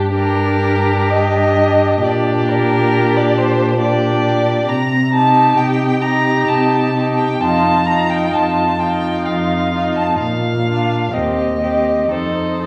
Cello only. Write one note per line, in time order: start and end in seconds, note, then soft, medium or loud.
0.00 2.00 G2 medium
2.04 4.65 A#2 medium
4.69 5.47 C3 medium
5.58 6.37 C3 medium
6.49 7.30 C3 medium
7.41 8.22 F2 medium
8.33 9.15 F2 medium
9.27 10.09 F2 medium
10.20 11.02 A#2 medium
11.14 11.99 D#2 soft
12.10 12.66 F2 soft